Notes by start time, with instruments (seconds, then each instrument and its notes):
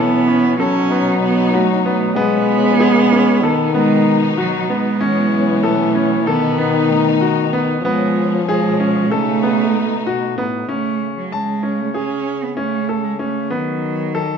Already playing: string section B2 F#3 B3 C#4, french horn E3, grand piano A4
0.00 cello B3
0.28 grand piano C#4
0.57 french horn F#3, cello C#4, string section D#4, grand piano A4
0.91 grand piano B3
1.22 cello B3
1.54 cello A3, grand piano F#4
1.85 cello A3, grand piano B3
2.15 string section F3 C#4, french horn G#3, grand piano B3, cello B3
2.80 grand piano G#4
3.12 grand piano C#4
3.41 string section B2 B3 D#4, french horn D#3, grand piano A4
3.74 cello G#3, grand piano B3
4.38 cello F#3, grand piano F#4
4.69 cello G#3, grand piano B3
5.00 string section B2 F#3 C#4, french horn E3, grand piano C#4
5.63 cello A3, grand piano A4
5.95 grand piano C#4
6.25 french horn D#3, cello B3, string section D#4, grand piano A4
6.58 grand piano B3
6.88 cello A3
7.21 grand piano F#4
7.53 grand piano B3
7.81 string section B2 F3 C#4, french horn F3, cello G#3, grand piano B3
8.48 cello G#3, grand piano G#4
8.80 grand piano C#4
9.09 french horn C#3, cello A3, string section A3 D#4, grand piano A4
9.43 grand piano B3
10.04 french horn B2, grand piano F#4
10.37 french horn A2, grand piano B3
10.68 french horn C#3, cello A3, grand piano C#4
11.17 cello F#3
11.32 cello G#3, grand piano A5
11.63 grand piano C#4
11.79 cello A3
11.94 cello C#4, grand piano G#4
12.43 cello B3
12.57 cello A3, grand piano C#4
12.89 grand piano A4
13.03 cello G#3
13.19 cello A3, grand piano C#4
13.50 french horn D#3, cello F#3, grand piano B3
14.15 grand piano A4